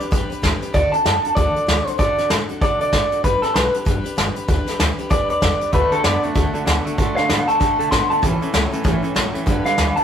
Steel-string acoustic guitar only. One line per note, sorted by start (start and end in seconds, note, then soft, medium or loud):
0.00 0.10 D4 soft
0.00 0.11 G4 medium
0.00 0.11 B4 medium
0.11 0.30 G3 medium
0.11 0.30 D4 loud
0.11 0.30 G4 loud
0.11 0.29 B4 loud
0.30 0.41 D4 medium
0.30 0.42 G4 medium
0.30 0.42 B4 medium
0.42 0.61 G3 medium
0.42 0.61 D4 medium
0.42 0.61 G4 medium
0.42 0.60 B4 medium
0.61 0.73 D4 soft
0.61 0.74 G4 medium
0.61 0.74 B4 medium
0.73 0.93 D3 medium
0.73 0.93 A3 medium
0.73 0.93 D4 medium
0.73 0.92 F#4 loud
0.73 0.91 A4 loud
0.93 1.04 D4 soft
0.93 1.05 F#4 medium
0.93 1.05 A4 medium
1.05 1.24 A3 medium
1.05 1.24 D4 medium
1.05 1.23 F#4 medium
1.05 1.22 A4 medium
1.24 1.36 D4 soft
1.24 1.37 F#4 medium
1.24 1.36 A4 medium
1.36 1.55 D3 medium
1.36 1.55 A3 medium
1.36 1.55 D4 medium
1.36 1.55 F#4 medium
1.36 1.53 A4 loud
1.55 1.66 D4 soft
1.55 1.67 F#4 medium
1.55 1.67 A4 medium
1.67 1.86 A3 medium
1.67 1.86 D4 medium
1.67 1.85 F#4 medium
1.67 1.84 A4 medium
1.85 1.98 D4 soft
1.85 1.98 F#4 soft
1.85 1.98 A4 soft
1.98 2.17 D3 medium
1.98 2.18 A3 medium
1.98 2.17 D4 medium
1.98 2.17 F#4 medium
1.98 2.15 A4 loud
2.16 2.29 D4 soft
2.16 2.30 F#4 medium
2.16 2.29 A4 medium
2.29 2.48 A3 medium
2.29 2.49 F#4 medium
2.49 2.61 D4 medium
2.49 2.62 F#4 medium
2.49 2.61 A4 medium
2.62 2.80 D3 medium
2.62 2.81 A3 medium
2.62 2.80 D4 medium
2.62 2.80 F#4 medium
2.62 2.78 A4 medium
2.80 2.92 D4 soft
2.80 2.92 F#4 medium
2.80 2.92 A4 medium
2.92 3.11 A3 medium
2.92 3.12 D4 medium
2.92 3.11 F#4 medium
2.92 3.10 A4 medium
3.11 3.23 D4 soft
3.11 3.24 F#4 medium
3.11 3.23 A4 soft
3.24 3.43 G3 medium
3.24 3.43 D4 medium
3.24 3.42 G4 medium
3.24 3.41 B4 medium
3.43 3.54 D4 soft
3.43 3.54 G4 soft
3.43 3.55 B4 medium
3.54 3.73 G3 medium
3.54 3.74 D4 medium
3.54 3.73 G4 medium
3.54 3.72 B4 medium
3.73 3.85 D4 soft
3.73 3.85 G4 soft
3.73 3.85 B4 medium
3.85 4.04 G3 medium
3.85 4.05 D4 medium
3.85 4.04 G4 medium
3.85 4.03 B4 medium
4.04 4.15 D4 soft
4.04 4.16 G4 medium
4.04 4.17 B4 medium
4.16 4.35 G3 medium
4.16 4.36 D4 medium
4.16 4.35 G4 medium
4.16 4.34 B4 medium
4.35 4.47 D4 soft
4.35 4.48 G4 medium
4.35 4.48 B4 medium
4.48 4.67 G3 medium
4.48 4.67 D4 medium
4.48 4.66 G4 loud
4.48 4.65 B4 loud
4.66 4.79 D4 soft
4.66 4.79 G4 medium
4.66 4.79 B4 medium
4.79 4.98 G3 medium
4.79 4.99 D4 medium
4.98 5.09 D4 medium
4.98 5.10 G4 medium
4.98 5.10 B4 medium
5.10 5.29 G3 medium
5.10 5.29 D4 medium
5.10 5.29 G4 loud
5.10 5.27 B4 loud
5.29 5.41 D4 soft
5.29 5.41 G4 soft
5.29 5.41 B4 medium
5.41 5.60 G3 medium
5.41 5.61 D4 medium
5.41 5.60 G4 medium
5.41 5.59 B4 medium
5.60 5.72 D4 soft
5.60 5.73 G4 soft
5.60 5.73 B4 medium
5.72 5.92 D3 medium
5.72 5.92 A3 medium
5.72 5.92 D4 medium
5.72 5.91 F#4 medium
5.72 5.90 A4 loud
5.92 6.03 D4 soft
5.92 6.04 F#4 medium
5.92 6.04 A4 medium
6.03 6.23 A3 medium
6.03 6.23 D4 medium
6.03 6.22 F#4 medium
6.23 6.34 D4 medium
6.23 6.35 F#4 medium
6.23 6.35 A4 medium
6.35 6.54 D3 medium
6.35 6.54 A3 medium
6.35 6.54 D4 loud
6.35 6.54 F#4 loud
6.35 6.52 A4 medium
6.54 6.65 D4 medium
6.54 6.67 F#4 medium
6.54 6.66 A4 medium
6.66 6.85 A3 medium
6.66 6.85 D4 medium
6.66 6.86 F#4 medium
6.66 6.85 A4 medium
6.86 6.97 D4 soft
6.86 6.98 F#4 medium
6.86 6.98 A4 medium
6.98 7.17 D3 medium
6.98 7.17 A3 medium
6.98 7.17 D4 loud
6.98 7.17 F#4 loud
6.98 7.16 A4 loud
7.17 7.28 D4 medium
7.17 7.29 F#4 soft
7.17 7.29 A4 medium
7.29 7.48 A3 medium
7.29 7.48 D4 medium
7.29 7.48 F#4 medium
7.48 7.60 D4 soft
7.48 7.60 F#4 soft
7.48 7.60 A4 medium
7.60 7.79 D3 medium
7.60 7.79 A3 medium
7.60 7.79 D4 medium
7.60 7.79 F#4 medium
7.60 7.78 A4 medium
7.79 7.91 D4 soft
7.79 7.91 F#4 soft
7.79 7.91 A4 medium
7.91 8.10 A3 medium
7.91 8.11 D4 medium
7.91 8.10 F#4 medium
7.91 8.09 A4 medium
8.10 8.23 D4 soft
8.10 8.23 F#4 soft
8.10 8.22 A4 medium
8.22 8.41 A2 medium
8.22 8.41 E3 medium
8.22 8.42 A3 medium
8.22 8.41 C#4 medium
8.22 8.41 E4 medium
8.22 8.40 A4 medium
8.41 8.51 A3 medium
8.41 8.52 C#4 medium
8.41 8.53 E4 medium
8.41 8.53 A4 medium
8.53 8.72 A3 medium
8.53 8.72 C#4 medium
8.53 8.71 E4 medium
8.53 8.70 A4 medium
8.72 8.83 A3 medium
8.72 8.83 C#4 medium
8.72 8.83 E4 medium
8.72 8.84 A4 medium
8.83 9.03 A2 medium
8.83 9.03 E3 medium
8.83 9.03 A3 loud
8.83 9.03 C#4 loud
8.83 9.02 E4 loud
8.83 9.01 A4 loud
9.02 9.13 A3 soft
9.02 9.14 C#4 medium
9.02 9.15 E4 medium
9.02 9.15 A4 medium
9.15 9.34 A3 medium
9.15 9.34 C#4 medium
9.15 9.34 E4 medium
9.15 9.33 A4 medium
9.34 9.46 A3 soft
9.34 9.46 C#4 soft
9.34 9.47 E4 medium
9.34 9.47 A4 medium
9.46 9.65 G3 loud
9.46 9.65 D4 medium
9.46 9.65 G4 loud
9.46 9.63 B4 loud
9.65 9.77 D4 soft
9.65 9.77 G4 soft
9.65 9.77 B4 medium
9.77 9.96 G3 medium
9.77 9.97 D4 medium
9.77 9.95 B4 medium
9.97 10.04 D4 soft
9.97 10.04 G4 soft
9.97 10.04 B4 medium